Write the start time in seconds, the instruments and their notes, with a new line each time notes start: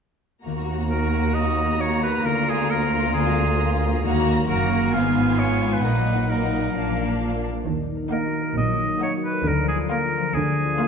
0.45 double bass section D#2, cello section D#2, harp D#3, viola section A#3, violin section F#4 A#5
0.61 harp A#3
0.76 harp F#4
0.90 oboe A#4, harp A#4
1.06 harp F#4
1.20 harp A#3
1.34 harp D#4, oboe D#5
1.50 harp A#3
1.65 harp F#4
1.80 harp A#4, oboe C#5
1.95 harp F#4
2.03 oboe B4
2.10 harp A#3
2.24 cello section D2, double bass section D2, harp D3, violin section F4, oboe A#4
2.39 harp A#3
2.49 oboe G#4
2.54 harp F4
2.69 harp A#4, oboe A#4
2.84 harp F4
2.99 harp A#3
3.14 harp D3, oboe G#4
3.28 harp G#3
3.44 harp F4
3.58 harp A#4
3.73 harp F4
3.88 harp A#3
4.03 cello section D#2, double bass section D#2, harp D#3, viola section A#3, violin section F#4 A#5
4.18 harp A#3
4.34 harp F#4
4.47 double bass section F#1, cello section F#2, viola section A#3, violin section F#4 A#5, harp A#4, oboe A#4
4.63 harp F#4
4.78 harp A#3
4.93 double bass section G#1, cello section G#2, harp G#2, viola section B3, violin section F4 G#5, oboe F5
5.09 harp G#3
5.24 harp F4
5.39 harp G#4, oboe C#5
5.54 harp B4
5.69 harp F4
5.73 oboe B4
5.82 double bass section A#1, cello section A#2, harp A#2, viola section A#3, violin section D#4 F#5, oboe B4
5.98 harp F#3
6.14 harp D#4
6.29 viola section A#3, violin section D#4 F#5, harp F#4, oboe A#4
6.44 harp A#4
6.60 harp D#4
6.73 double bass section A#1, cello section A#2, harp A#2, viola section A#3, violin section D4 F5
6.91 harp F3
7.05 harp D4
7.20 harp F4
7.36 harp A#4
7.51 harp D4
7.65 double bass section D#2, cello section D#3, harp D#3
7.81 harp D#4
7.96 harp A#4
8.10 viola section A#3, violin section D#4 F#5, oboe A#4, harp D#5
8.26 harp F#4
8.41 harp A#4
8.56 double bass section A#1, cello section A#2, harp F#3, oboe D#5
8.72 harp D#4
8.87 harp A#4
9.02 viola section A#3, violin section D#4 F#5, oboe C#5, harp D#5
9.17 harp F#4
9.25 oboe B4
9.32 harp A#4
9.46 double bass section D2, harp D3, cello section D3, oboe A#4
9.61 harp F3
9.68 oboe G#4
9.76 harp F4
9.90 viola section A#3, violin section F4 F5, oboe A#4, harp A#4
10.05 harp F4
10.20 harp F3
10.34 double bass section D2, harp D3, cello section D3, oboe G#4
10.49 harp D4
10.65 harp F4
10.80 viola section A#3, violin section F4 F5, harp A#4